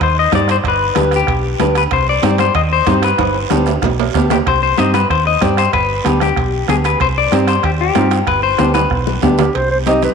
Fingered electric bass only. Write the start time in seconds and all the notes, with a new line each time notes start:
0.01 D#2
0.33 G2
0.64 G1
0.97 D2
1.28 B1
1.60 D2
1.92 C2
2.23 G2
2.55 D#2
2.87 G2
3.19 G1
3.51 D2
3.83 B1
4.15 D2
4.47 C2
4.79 G2
5.10 D#2
5.42 G2
5.73 G1
6.05 D2
6.37 B1
6.69 D2
7.01 C2
7.32 G2
7.64 D#2
7.96 G2
8.27 G1
8.60 D2
8.91 B1
9.23 D2
9.55 C2